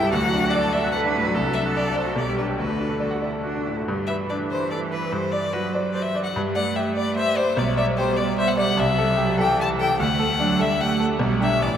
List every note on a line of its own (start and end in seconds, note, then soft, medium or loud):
0.00 0.14 C2 medium
0.00 0.14 G2 medium
0.00 0.03 G3 medium
0.00 0.12 G3 medium
0.00 0.11 E4 loud
0.00 0.14 E4 medium
0.00 0.14 G4 medium
0.00 0.14 A4 medium
0.00 0.14 E5 medium
0.00 0.11 G5 loud
0.00 0.13 A5 medium
0.11 1.31 D2 medium
0.11 0.53 F#4 medium
0.11 0.52 F#5 loud
0.24 0.39 F#3 medium
0.33 0.49 D4 medium
0.44 0.59 F#4 medium
0.50 0.93 A4 medium
0.50 0.74 D5 loud
0.54 0.70 D5 medium
0.63 0.79 A5 medium
0.73 0.90 D5 medium
0.73 0.91 E5 loud
0.84 1.00 F#4 medium
0.92 1.11 A4 medium
0.92 1.36 B4 loud
0.92 1.00 F#5 loud
1.05 1.20 D4 medium
1.15 1.31 A2 medium
1.25 1.34 F#3 medium
1.35 2.15 C2 medium
1.35 2.19 A4 medium
1.46 1.62 F#3 medium
1.53 1.72 D4 medium
1.53 1.61 E5 loud
1.66 1.82 F#4 medium
1.75 1.98 D5 medium
1.75 1.92 D5 medium
1.86 2.02 A5 medium
1.95 2.17 C5 medium
1.95 2.12 D5 medium
2.05 2.16 F#4 medium
2.16 2.57 B1 medium
2.16 2.58 G4 medium
2.16 2.37 D5 medium
2.28 2.44 G3 medium
2.38 2.55 D4 medium
2.38 2.46 B4 medium
2.48 2.59 G4 medium
2.59 3.83 D2 medium
2.59 2.96 F#4 medium
2.59 3.03 B4 medium
2.68 2.86 A3 soft
2.79 2.97 D4 soft
2.89 3.07 A4 medium
3.00 3.21 F#4 medium
3.00 3.45 A4 medium
3.00 3.18 D5 medium
3.11 3.29 F#5 medium
3.22 3.30 E4 medium
3.22 3.40 D5 medium
3.33 3.50 A4 soft
3.44 3.68 D4 medium
3.44 3.61 F#4 medium
3.55 3.72 D4 medium
3.66 3.83 A2 soft
3.66 3.87 E4 medium
3.77 3.87 A3 soft
3.88 5.08 G2 medium
3.88 4.11 D3 medium
4.07 5.57 E3 medium
4.07 4.42 B4 medium
4.07 4.15 E5 loud
4.29 4.63 D4 medium
4.29 4.37 D5 medium
4.50 4.83 B4 medium
4.50 4.70 C5 loud
4.71 4.91 A4 medium
4.71 4.79 D5 loud
4.91 5.12 B4 medium
4.91 5.14 B4 loud
5.12 6.32 G2 medium
5.12 5.33 C5 loud
5.31 5.54 D5 loud
5.31 5.65 D5 medium
5.53 6.35 F#3 medium
5.53 5.86 F#4 medium
5.53 5.74 B4 loud
5.72 5.92 C5 medium
5.72 6.07 D5 medium
5.92 6.15 C5 medium
5.92 6.04 D5 loud
6.02 6.23 E5 loud
6.15 6.35 D5 medium
6.23 6.34 F#5 loud
6.35 7.54 G2 medium
6.35 6.58 G3 medium
6.55 7.57 A3 medium
6.55 6.88 D5 medium
6.55 6.77 F#5 loud
6.76 7.09 G4 medium
6.76 6.95 E5 loud
6.95 7.16 D5 loud
6.95 7.29 D5 medium
7.16 7.36 C5 medium
7.16 7.38 E5 loud
7.37 7.60 C5 loud
7.37 7.57 D5 medium
7.57 8.74 B1 loud
7.57 9.19 G3 medium
7.57 7.77 D5 loud
7.77 8.09 D5 medium
7.77 7.85 E5 loud
7.97 8.30 G4 medium
7.97 8.18 C5 loud
8.17 8.37 D5 loud
8.17 8.50 D5 medium
8.38 8.58 C5 medium
8.38 8.49 E5 loud
8.48 8.57 F#5 loud
8.57 8.78 D5 medium
8.57 8.81 F#5 loud
8.77 9.95 C2 loud
8.77 9.39 E5 loud
8.98 9.30 A4 medium
9.17 9.41 F#3 loud
9.17 9.50 G4 medium
9.38 9.99 E3 medium
9.38 9.70 A4 medium
9.38 9.58 G5 loud
9.57 9.78 G4 medium
9.57 9.68 A5 loud
9.79 9.99 A4 medium
9.79 9.99 G5 loud
9.99 11.17 D2 loud
9.99 10.41 A3 medium
9.99 10.62 F#5 loud
10.19 10.51 A4 medium
10.39 10.62 F#3 loud
10.39 10.71 D4 medium
10.59 10.80 G3 medium
10.59 10.91 A4 medium
10.59 10.82 E5 loud
10.80 11.19 A3 medium
10.80 11.00 G4 medium
10.80 11.00 F#5 loud
11.00 11.20 A4 medium
11.19 11.59 B1 loud
11.19 11.58 G3 medium
11.40 11.59 D4 medium
11.40 11.59 G4 medium
11.40 11.64 E5 loud
11.60 11.77 A1 medium
11.60 11.77 E3 medium
11.60 11.77 D5 loud